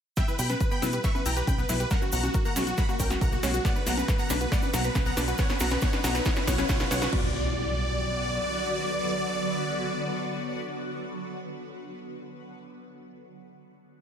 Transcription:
0.17 B3 E5 G5, kick, snare, closed hi-hat, riser, cabasa
0.28 E4 B4, cabasa
0.39 B1 G4 G5 B5, open hi-hat, cabasa
0.50 B4, snare, closed hi-hat, high conga, cabasa
0.60 B4, kick, closed hi-hat, cabasa
0.71 B3 G5 B5, cabasa
0.82 B1 E4 B4, snare, open hi-hat, high conga, cabasa
0.92 G4 B4, closed hi-hat, cabasa
1.04 B4 E5 C#6, kick, snare, closed hi-hat, cabasa
1.15 B3 B4, high conga, cabasa
1.26 B1 E4 G5 A#5, open hi-hat, cabasa
1.37 G4 B4, closed hi-hat, cabasa
1.47 B1 B4 G5 B5, kick, closed hi-hat, high conga, cabasa
1.58 B3 B4, cabasa
1.69 B1 E4 B4, snare, open hi-hat, cabasa
1.80 G4 B4, closed hi-hat, cabasa
1.91 A#3 A#4 F#5, kick, snare, closed hi-hat, cabasa
2.02 C#4 F#4, cabasa
2.12 B1 F#4 F#5 A#5, open hi-hat, cabasa
2.23 F#4, closed hi-hat, high conga, cabasa
2.34 F#4 A#4, kick, closed hi-hat, cabasa
2.45 A#3 F#5 A#5, cabasa
2.56 B1 C#4 F#4, snare, open hi-hat, high conga, cabasa
2.67 F#4, closed hi-hat, cabasa
2.78 A#4 F#5 B5, kick, snare, closed hi-hat, cabasa
2.89 A#3 F#4, cabasa
3.00 B1 C#4 A#4 G5, kick, open hi-hat, cabasa
3.10 F#4, snare, closed hi-hat, high conga, cabasa
3.21 B1 A#4 F#5 A#5, kick, closed hi-hat, cabasa
3.32 A#3 F#4, cabasa
3.43 B1 C#4 F#4, snare, open hi-hat, cabasa
3.54 F#4, closed hi-hat, cabasa
3.65 B3 D5 F#5, kick, snare, closed hi-hat, cabasa
3.76 D4 B4, cabasa
3.87 B1 F#4 F#5 A#5, snare, open hi-hat, cabasa
3.97 B4, closed hi-hat, high conga, cabasa
4.08 B4, kick, snare, closed hi-hat, cabasa
4.19 B3 F#5 A#5, cabasa
4.30 B1 D4 B4, snare, open hi-hat, high conga, cabasa
4.41 F#4 B4, closed hi-hat, cabasa
4.52 B3 D5 F#5, kick, snare, closed hi-hat, cabasa
4.62 D4 B4, high conga, cabasa
4.73 B1 F#4 F#5 A#5, snare, open hi-hat, cabasa
4.84 B4, closed hi-hat, cabasa
4.95 B1 B4, kick, snare, closed hi-hat, high conga, cabasa
5.06 B3 F#5 A#5, cabasa
5.17 B1 D4 B4, snare, open hi-hat, cabasa
5.28 F#4 B4, closed hi-hat, cabasa
5.38 B3 C#5 F#5, kick, snare, closed hi-hat, cabasa
5.49 C#4 B4, snare, cabasa
5.60 B1 F#4 F#5 A#5, snare, open hi-hat, cabasa
5.70 B4, snare, closed hi-hat, high conga, cabasa
5.81 B3 C#5 F#5, kick, snare, closed hi-hat, cabasa
5.93 C#4 B4, snare, cabasa
6.04 B1 F#4 F#5 A#5, snare, open hi-hat, high conga, cabasa
6.15 B4, snare, closed hi-hat, cabasa
6.25 B3 C#5 F#5, kick, snare, closed hi-hat, cabasa
6.36 C#4 B4, snare, cabasa
6.47 B1 B3 C#5 F#5, kick, snare, open hi-hat, cabasa
6.58 C#4 B4, snare, closed hi-hat, high conga, cabasa
6.69 B1 B3 C#5 F#5, kick, snare, closed hi-hat, cabasa
6.79 C#4 B4, snare, cabasa
6.91 B1 B3 C#5 F#5, snare, open hi-hat, cabasa
7.02 C#4 B4, snare, closed hi-hat, cabasa
7.13 B1 D3 F#3 B3 F#4 D5, kick, crash, impact

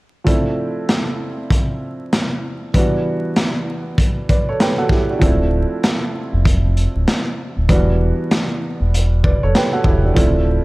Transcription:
0.24 F3 A3 C4 D4, kick, closed hi-hat
0.28 E4
0.89 snare, closed hi-hat
1.51 kick, closed hi-hat
2.13 snare, closed hi-hat
2.74 E3 G3 B3 D4, kick, closed hi-hat
2.78 F#4
3.36 snare, closed hi-hat
3.98 kick, closed hi-hat
4.29 B4 D5, kick, closed hi-hat
4.49 A4 C#5
4.60 G4 B4 G5, snare, closed hi-hat
4.78 F#4 A4 F#5
4.89 E4 G4, kick, snare
5.10 D4 F#4
5.19 D1 F3 A3 C4 D4, kick, closed hi-hat
5.23 E4
5.84 snare, closed hi-hat
6.33 F1
6.45 kick, closed hi-hat
6.77 closed hi-hat
6.95 D1
7.08 snare, closed hi-hat
7.57 D1
7.69 E1 E3 G3 B3 D4, kick, closed hi-hat
7.73 F#4
8.31 snare, closed hi-hat
8.80 E1
8.94 closed hi-hat
9.24 B4 D5, kick
9.42 F1 A4 C#5
9.55 G4 B4 G5, snare, closed hi-hat
9.73 F#4 A4 F#5
9.84 E1 E4 G4, kick
10.04 D4 F#4
10.14 D1 F3 A3 C4 D4, kick, closed hi-hat
10.18 E4

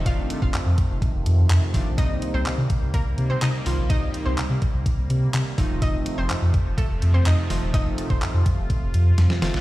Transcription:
Already playing: C3 D#3 F3 A3
0.06 F1 D#3 F3 A3 C4 D4 F4 F5, kick, closed hi-hat
0.30 closed hi-hat
0.42 F1 F4 F5, kick
0.54 F2, clap, closed hi-hat
0.66 F2
0.78 kick, closed hi-hat
0.90 F1
1.02 kick, closed hi-hat
1.14 F1
1.26 F2, closed hi-hat
1.50 F2, clap, closed hi-hat
1.74 F1 D#3 F3 A3 C4 D4, kick, open hi-hat
1.86 A#1
1.98 C2 D#3 G3 A#3 C4 D#4 D#5, kick, closed hi-hat
2.22 closed hi-hat
2.34 C2 C4 C5
2.46 C3, clap, closed hi-hat
2.58 C3
2.70 kick, closed hi-hat
2.82 C2
2.94 A#3 A#4, kick, closed hi-hat
3.06 C2
3.18 C3, closed hi-hat
3.30 C4 C5
3.42 C3 D#4 D#5, clap, closed hi-hat
3.66 C2 D#3 G3 A#3 C4 F4, open hi-hat
3.78 A#1
3.90 C2 D#3 G3 A#3 C4 D#4 D#5, kick, closed hi-hat
4.14 closed hi-hat
4.26 C2 C4 C5
4.38 C3, clap, closed hi-hat
4.50 C3
4.62 kick, closed hi-hat
4.74 C2
4.86 kick, closed hi-hat
4.98 C2
5.10 C3, closed hi-hat
5.34 C3, clap, closed hi-hat
5.58 F1 C3 D#3 F3 A3 C4 D#4, kick, open hi-hat
5.70 D#1
5.82 F1 D#4 D#5, kick, closed hi-hat
6.06 closed hi-hat
6.18 F1 C4 C5
6.30 F2, clap, closed hi-hat
6.42 F2
6.54 kick, closed hi-hat
6.66 F1
6.78 A3 A4, kick, closed hi-hat
6.90 F1
7.02 F2, closed hi-hat
7.14 C4 C5
7.26 F2 D#4 D#5, clap, closed hi-hat
7.50 F1 D#3 F3 A3 C4 D#4 F4, open hi-hat
7.62 D#1
7.74 F1 D#3 F3 A3 C4 D#4 D#5, kick, closed hi-hat
7.98 closed hi-hat
8.10 F1 C4 C5, kick
8.22 F2, clap, closed hi-hat
8.34 F2
8.46 kick, closed hi-hat
8.58 F1
8.70 kick, closed hi-hat
8.82 F1
8.94 F2, closed hi-hat
9.18 F2, snare, closed hi-hat
9.30 snare
9.42 F1 D#3 F3 A3 C4 F4, snare, open hi-hat
9.54 A#1, snare

